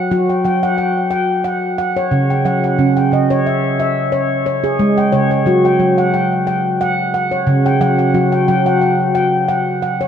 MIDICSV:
0, 0, Header, 1, 2, 480
1, 0, Start_track
1, 0, Tempo, 669643
1, 83, Time_signature, 4, 2, 24, 8
1, 7223, End_track
2, 0, Start_track
2, 0, Title_t, "Handpan"
2, 0, Program_c, 0, 114
2, 0, Note_on_c, 0, 78, 65
2, 80, Note_on_c, 0, 54, 87
2, 81, Note_off_c, 0, 78, 0
2, 83, Note_on_c, 0, 66, 80
2, 211, Note_on_c, 0, 79, 54
2, 270, Note_off_c, 0, 54, 0
2, 316, Note_off_c, 0, 79, 0
2, 319, Note_on_c, 0, 54, 79
2, 322, Note_off_c, 0, 66, 0
2, 324, Note_on_c, 0, 79, 65
2, 452, Note_on_c, 0, 78, 72
2, 550, Note_off_c, 0, 79, 0
2, 558, Note_on_c, 0, 79, 58
2, 690, Note_off_c, 0, 78, 0
2, 784, Note_off_c, 0, 79, 0
2, 793, Note_on_c, 0, 79, 73
2, 1035, Note_off_c, 0, 79, 0
2, 1035, Note_on_c, 0, 78, 72
2, 1077, Note_off_c, 0, 54, 0
2, 1269, Note_off_c, 0, 78, 0
2, 1278, Note_on_c, 0, 78, 74
2, 1408, Note_on_c, 0, 73, 74
2, 1515, Note_on_c, 0, 49, 93
2, 1645, Note_off_c, 0, 78, 0
2, 1646, Note_off_c, 0, 73, 0
2, 1650, Note_on_c, 0, 79, 64
2, 1705, Note_off_c, 0, 49, 0
2, 1756, Note_on_c, 0, 54, 77
2, 1760, Note_on_c, 0, 78, 72
2, 1883, Note_off_c, 0, 78, 0
2, 1892, Note_on_c, 0, 78, 59
2, 1995, Note_off_c, 0, 54, 0
2, 1997, Note_on_c, 0, 49, 81
2, 1998, Note_off_c, 0, 79, 0
2, 1998, Note_on_c, 0, 61, 74
2, 2126, Note_on_c, 0, 79, 65
2, 2128, Note_off_c, 0, 78, 0
2, 2186, Note_off_c, 0, 49, 0
2, 2235, Note_on_c, 0, 49, 77
2, 2236, Note_off_c, 0, 61, 0
2, 2244, Note_on_c, 0, 75, 62
2, 2368, Note_on_c, 0, 73, 77
2, 2476, Note_off_c, 0, 79, 0
2, 2483, Note_on_c, 0, 76, 58
2, 2605, Note_off_c, 0, 73, 0
2, 2608, Note_off_c, 0, 75, 0
2, 2712, Note_off_c, 0, 76, 0
2, 2720, Note_on_c, 0, 76, 75
2, 2954, Note_on_c, 0, 73, 72
2, 2957, Note_off_c, 0, 76, 0
2, 2994, Note_off_c, 0, 49, 0
2, 3190, Note_off_c, 0, 73, 0
2, 3198, Note_on_c, 0, 73, 71
2, 3324, Note_on_c, 0, 68, 76
2, 3436, Note_on_c, 0, 56, 100
2, 3562, Note_off_c, 0, 68, 0
2, 3564, Note_off_c, 0, 73, 0
2, 3567, Note_on_c, 0, 79, 70
2, 3625, Note_off_c, 0, 56, 0
2, 3672, Note_on_c, 0, 73, 84
2, 3678, Note_on_c, 0, 49, 76
2, 3798, Note_off_c, 0, 73, 0
2, 3806, Note_on_c, 0, 73, 64
2, 3913, Note_on_c, 0, 54, 88
2, 3915, Note_off_c, 0, 79, 0
2, 3916, Note_off_c, 0, 49, 0
2, 3919, Note_on_c, 0, 66, 76
2, 4044, Note_off_c, 0, 73, 0
2, 4050, Note_on_c, 0, 79, 61
2, 4103, Note_off_c, 0, 54, 0
2, 4154, Note_on_c, 0, 54, 86
2, 4156, Note_off_c, 0, 66, 0
2, 4286, Note_on_c, 0, 78, 70
2, 4390, Note_off_c, 0, 79, 0
2, 4399, Note_on_c, 0, 79, 64
2, 4524, Note_off_c, 0, 78, 0
2, 4630, Note_off_c, 0, 79, 0
2, 4638, Note_on_c, 0, 79, 74
2, 4876, Note_off_c, 0, 79, 0
2, 4881, Note_on_c, 0, 78, 82
2, 4915, Note_off_c, 0, 54, 0
2, 5109, Note_off_c, 0, 78, 0
2, 5118, Note_on_c, 0, 78, 68
2, 5242, Note_on_c, 0, 73, 69
2, 5353, Note_on_c, 0, 49, 106
2, 5483, Note_off_c, 0, 73, 0
2, 5485, Note_off_c, 0, 78, 0
2, 5489, Note_on_c, 0, 79, 75
2, 5544, Note_off_c, 0, 49, 0
2, 5596, Note_on_c, 0, 54, 83
2, 5598, Note_on_c, 0, 78, 84
2, 5716, Note_off_c, 0, 78, 0
2, 5725, Note_on_c, 0, 78, 60
2, 5786, Note_off_c, 0, 54, 0
2, 5837, Note_on_c, 0, 54, 89
2, 5838, Note_on_c, 0, 66, 73
2, 5839, Note_off_c, 0, 79, 0
2, 5965, Note_off_c, 0, 78, 0
2, 5965, Note_on_c, 0, 79, 65
2, 6027, Note_off_c, 0, 54, 0
2, 6070, Note_off_c, 0, 79, 0
2, 6078, Note_off_c, 0, 66, 0
2, 6079, Note_on_c, 0, 79, 70
2, 6081, Note_on_c, 0, 54, 92
2, 6208, Note_on_c, 0, 78, 71
2, 6310, Note_off_c, 0, 79, 0
2, 6318, Note_on_c, 0, 79, 61
2, 6448, Note_off_c, 0, 78, 0
2, 6549, Note_off_c, 0, 79, 0
2, 6558, Note_on_c, 0, 79, 81
2, 6798, Note_on_c, 0, 78, 78
2, 6799, Note_off_c, 0, 79, 0
2, 6843, Note_off_c, 0, 54, 0
2, 7033, Note_off_c, 0, 78, 0
2, 7042, Note_on_c, 0, 78, 71
2, 7173, Note_on_c, 0, 73, 75
2, 7223, Note_off_c, 0, 73, 0
2, 7223, Note_off_c, 0, 78, 0
2, 7223, End_track
0, 0, End_of_file